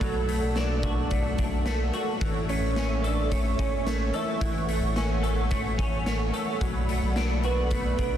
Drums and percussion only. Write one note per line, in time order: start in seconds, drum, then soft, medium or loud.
0.01 kick medium
0.01 closed hi-hat medium
0.29 closed hi-hat soft
0.56 snare loud
0.56 closed hi-hat medium
0.83 kick medium
0.83 closed hi-hat soft
1.11 kick medium
1.11 closed hi-hat medium
1.38 kick medium
1.38 closed hi-hat soft
1.66 snare medium
1.66 closed hi-hat medium
1.93 closed hi-hat soft
2.21 kick medium
2.21 closed hi-hat medium
2.49 closed hi-hat soft
2.76 snare loud
2.76 closed hi-hat medium
3.04 closed hi-hat soft
3.31 kick medium
3.31 closed hi-hat medium
3.59 kick medium
3.59 closed hi-hat soft
3.87 snare medium
3.87 closed hi-hat medium
4.13 closed hi-hat soft
4.41 kick medium
4.41 closed hi-hat medium
4.68 closed hi-hat medium
4.96 snare loud
4.96 closed hi-hat medium
5.24 closed hi-hat soft
5.51 kick medium
5.51 closed hi-hat medium
5.79 kick medium
5.79 closed hi-hat soft
6.06 snare medium
6.06 closed hi-hat medium
6.34 closed hi-hat soft
6.61 kick medium
6.61 closed hi-hat medium
6.89 closed hi-hat soft
7.16 snare loud
7.16 closed hi-hat medium
7.43 closed hi-hat soft
7.71 kick medium
7.71 closed hi-hat medium
7.99 kick medium
7.99 closed hi-hat soft